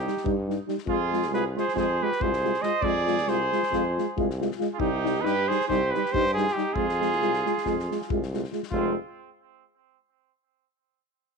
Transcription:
Already playing: trumpet D#4, cornet G4
0.05 euphonium G3 D#4, snare
0.17 snare
0.24 tuba G2, euphonium G3 D#4, kick
0.48 euphonium G3 D#4, snare
0.67 euphonium G3 D#4, snare
0.78 snare
0.86 tuba F2, euphonium G#3 F4, trumpet F4, cornet G#4, kick
1.12 euphonium G#3 F4, snare
1.22 snare
1.31 tuba C2, euphonium G#3 F4, cornet B4, snare
1.35 trumpet G#4
1.56 euphonium G#3 F4, cornet C5, snare
1.60 trumpet G#4
1.68 snare
1.75 tuba F2, euphonium G#3 F4, cornet C5, kick, snare
1.79 trumpet G#4
2.01 euphonium G#3 F4, trumpet G4, cornet B4
2.12 snare
2.20 tuba C2, euphonium G#3 F4, trumpet G#4, cornet C5, kick
2.33 snare
2.43 euphonium G#3 F4, snare
2.54 snare
2.62 euphonium G#3 F4, trumpet C5, cornet D#5, snare
2.82 tuba F2, euphonium G#3 F4, trumpet G#4, cornet D5, kick
3.06 euphonium G#3 F4, snare
3.18 snare
3.27 tuba C2, euphonium G#3 F4, trumpet G#4, cornet C5, snare
3.52 euphonium G#3 F4, snare
3.63 snare
3.71 tuba F2, euphonium G#3 F4, kick, snare
3.96 euphonium G#3 F4, snare
4.17 tuba C2, euphonium G#3 F4, kick
4.30 snare
4.40 euphonium G#3 F4, snare
4.51 snare
4.58 euphonium G#3 F4, snare
4.74 trumpet F4, cornet G#4
4.79 tuba C2, euphonium G3 D#4, trumpet D#4, cornet G4, kick
5.03 euphonium G3 D#4, snare
5.15 snare
5.21 tuba G2, euphonium G3 D#4, cornet B4
5.25 trumpet G4, snare
5.48 euphonium G3 D#4, trumpet G#4, cornet C5, snare
5.61 snare
5.68 tuba C2, euphonium G3 D#4, trumpet G4, cornet C5, kick, snare
5.91 euphonium G3 D#4, trumpet G4, cornet B4, snare
6.06 snare
6.12 tuba G2, euphonium G3 D#4, trumpet G4, cornet C5, kick
6.26 snare
6.34 euphonium G3 D#4, cornet G#4, snare
6.39 trumpet F4
6.47 snare
6.53 euphonium G3 D#4, trumpet D#4, cornet G4
6.57 snare
6.73 tuba F2, euphonium G#3 F4, trumpet F4, cornet G#4, kick
6.89 snare
7.01 euphonium G#3 F4, snare
7.12 snare
7.20 tuba C2, euphonium G#3 F4, snare
7.33 snare
7.45 euphonium G#3 F4, snare
7.57 snare
7.65 tuba F2, euphonium G#3 F4, kick, snare
7.79 snare
7.90 euphonium G#3 F4, snare
8.01 snare
8.09 tuba C2, euphonium G#3 F4, kick
8.22 snare
8.32 euphonium G#3 F4, snare
8.44 snare
8.52 euphonium G#3 F4, snare
8.63 snare
8.71 tuba F1, euphonium G#3 F4, trumpet C4, cornet F4, kick

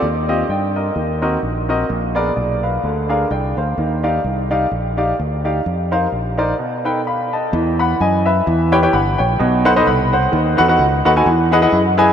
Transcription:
0.02 fingered electric bass D#2, grand piano D#3
0.29 grand piano C4 F4 G4 D#5
0.49 fingered electric bass G2, grand piano D5 G5
0.76 grand piano A#4 D#5
0.96 fingered electric bass D#2, grand piano D#3
1.22 grand piano C4 F#4 A#4 D#5
1.43 fingered electric bass A#1
1.69 grand piano C4 F#4 A#4 D#5
1.89 fingered electric bass A#1, grand piano A#2
2.15 grand piano B3 G#4 A#4 D5
2.36 fingered electric bass B1, grand piano G#4 D5
2.63 grand piano B4 F5
2.83 fingered electric bass D2, grand piano D3
3.09 grand piano D4 G#4 A#4 F5
3.31 fingered electric bass C2, grand piano D5 G5
3.57 fingered electric bass D2, grand piano C5 F5
3.78 fingered electric bass D#2, grand piano D#3
4.03 grand piano D#4 G4 D5 F5
4.24 fingered electric bass C2
4.51 grand piano D#4 G4 D5 F5
4.71 fingered electric bass A#1
4.97 grand piano D#4 G4 D5 F5
5.20 fingered electric bass D2
5.44 grand piano D#4 G4 D5 F5
5.66 fingered electric bass F2
5.91 grand piano D#4 A#4 C5 F5
6.12 fingered electric bass A#1
6.38 grand piano D#4 A#4 C5 D5
6.59 grand piano B2
6.85 grand piano D#4 A4 B4 G5
7.07 grand piano F5 B5
7.33 grand piano D#5 A5
7.53 fingered electric bass E2, grand piano E3
7.79 grand piano F#5 B5
8.00 fingered electric bass F#2, grand piano D#5 G#5
8.26 grand piano B4 E5
8.47 fingered electric bass E2, grand piano E3
8.72 grand piano E4 G4 B4 C#5 G5
8.82 grand piano E4 G4 B4 C#5 G5
8.93 fingered electric bass G1, grand piano F#5 B5
9.18 fingered electric bass A#1, grand piano C#5 G5
9.39 fingered electric bass B1, grand piano B2
9.65 grand piano D#4 A4 B4 C5 F#5
9.76 grand piano D#4 A4 B4 C5 D#5
9.87 fingered electric bass C2, grand piano F#5 B5
10.13 grand piano C5 F#5
10.32 fingered electric bass D#2, grand piano D#3
10.57 fingered electric bass E2, grand piano D#4 F#4 A4 B4 F#5
10.68 grand piano D#4 F#4 A4 B4 F#5
10.79 fingered electric bass C#2
11.05 fingered electric bass D#2, grand piano D#4 F#4 A4 B4 F#5
11.16 grand piano D#4 F#4 A4 B4 G#5
11.26 fingered electric bass E2, grand piano E3
11.52 grand piano E4 G#4 B4 D#5 F#5
11.62 grand piano E4 G#4 B4 D#5 F#5
11.72 fingered electric bass F#2
11.98 grand piano E4 G#4 B4 D#5 G#5

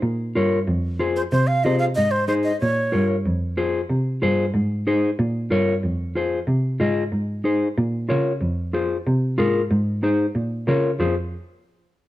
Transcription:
0.03 cello A#2
0.35 cello G2, clean electric guitar F4 A#4 C#5
0.68 cello F2
0.99 clean electric guitar F4 G#4 C5
1.16 flute C5
1.32 cello C3, flute C5
1.47 flute F5
1.64 cello C3, clean electric guitar F4 G#4 C5, flute D#5
1.79 flute F5
1.95 cello G#2, flute D#5
2.11 flute C5
2.28 clean electric guitar D#4 G#4 C5, flute C5
2.44 flute D#5
2.60 cello A#2, flute C#5
2.92 cello G2, clean electric guitar F4 A#4 C#5
3.25 cello F2
3.57 clean electric guitar F4 G#4 C5
3.90 cello C3
4.22 cello G2, clean electric guitar F4 G#4 C5
4.54 cello G#2
4.87 clean electric guitar D#4 G#4 C5
5.19 cello A#2
5.51 cello G2, clean electric guitar F4 A#4 C#5
5.83 cello F2
6.15 clean electric guitar F4 G#4 C5
6.47 cello C3
6.80 cello G#2, clean electric guitar F4 G#4 D#5
7.12 cello G#2
7.44 clean electric guitar D#4 G#4 C5
7.78 cello A#2
8.09 cello C#3, clean electric guitar F4 A#4 C#5
8.41 cello F2
8.73 clean electric guitar F4 G#4 C5
9.06 cello C3
9.38 cello G#2, clean electric guitar F4 G#4 A#4
9.70 cello G#2
10.03 clean electric guitar D#4 G#4 C5
10.35 cello A#2
10.67 cello C#3, clean electric guitar F4 A#4 C#5
10.99 cello F2, clean electric guitar F4 G#4 C5

